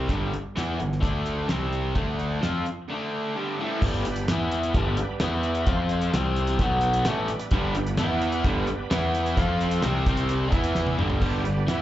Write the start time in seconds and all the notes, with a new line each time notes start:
0.08 G1 G2 D3 G3, kick, closed hi-hat
0.32 muted distorted electric guitar stroke, muted overdriven electric guitar stroke, muted picked electric bass stroke, closed hi-hat
0.56 E2 E3 B3 E4, snare, closed hi-hat
0.78 G1 G2 D3, closed hi-hat
0.92 snare
1.01 D2 D3 A3 D4, kick, closed hi-hat
1.26 closed hi-hat
1.48 C2 C3 G3 C4, snare, closed hi-hat
1.73 closed hi-hat
1.95 D2 D3 A3 D4, kick, closed hi-hat
2.19 closed hi-hat
2.41 F2 F3 C4 F4, snare, closed hi-hat
2.66 closed hi-hat
2.90 D3 A3 D4
3.36 G2 D3 G3
3.51 C4 D4
3.55 E4 F4
3.60 A2 E3 A3 G4
3.65 A4 B4
3.70 C5 D5
3.76 E5 F5
3.80 G1 G2 D3 G3 B3 D4 B4, kick, crash
4.05 G1 G2 D3, closed hi-hat
4.16 closed hi-hat
4.27 E2 E3 B3 E4 B4, snare, closed hi-hat
4.52 closed hi-hat
4.63 closed hi-hat
4.74 G1 G2 D3 G3 B3 D4 B4, kick, closed hi-hat
4.97 muted overdriven electric guitar stroke, muted picked electric bass stroke, closed hi-hat
5.20 E2 E3 B3 E4 B4, snare, closed hi-hat
5.43 closed hi-hat
5.55 closed hi-hat
5.66 F2 F3 C4 F4 C5, kick, closed hi-hat
5.89 closed hi-hat
6.01 closed hi-hat
6.12 C2 C3 G3 C4 G4 C5, snare, closed hi-hat
6.36 closed hi-hat
6.47 snare, closed hi-hat
6.57 B1 B2 B3 F#4 B4, kick, closed hi-hat
6.61 F#3 B3
6.81 closed hi-hat
6.93 closed hi-hat
7.04 A1 A2 E3 G3 A3 B3 D4 B4, snare, closed hi-hat
7.28 muted picked electric bass stroke, muted overdriven electric guitar stroke, closed hi-hat
7.39 closed hi-hat
7.51 G1 G2 D3 G3, kick, closed hi-hat
7.75 G1 G2 D3, closed hi-hat
7.87 closed hi-hat
7.97 E2 E3 B3 E4 B4, snare, closed hi-hat
8.22 closed hi-hat
8.32 closed hi-hat
8.44 G1 G2 D3 G3 B3 D4 B4, kick, closed hi-hat
8.67 muted distorted electric guitar stroke, muted overdriven electric guitar stroke, muted picked electric bass stroke, closed hi-hat
8.90 E2 E3 B3 E4 B4, snare, closed hi-hat
9.14 closed hi-hat
9.26 closed hi-hat
9.36 F2 F3 C4 F4 C5, kick, closed hi-hat
9.61 closed hi-hat
9.71 closed hi-hat
9.82 C2 C3 G3 C4, snare, closed hi-hat
10.06 C2 C3 G3 C4 G4 C5, kick, closed hi-hat
10.17 closed hi-hat
10.29 closed hi-hat
10.52 E2 E3 B3 E4 B4, kick, closed hi-hat
10.64 closed hi-hat
10.75 snare
10.87 high tom
10.98 G1 G2 D3 G3, mid tom
11.10 floor tom
11.20 G1 G2 D3 G3, kick, crash
11.25 G3 B3 D4
11.43 G1 G2 D3, closed hi-hat
11.66 E2 E3 B3 E4, snare, closed hi-hat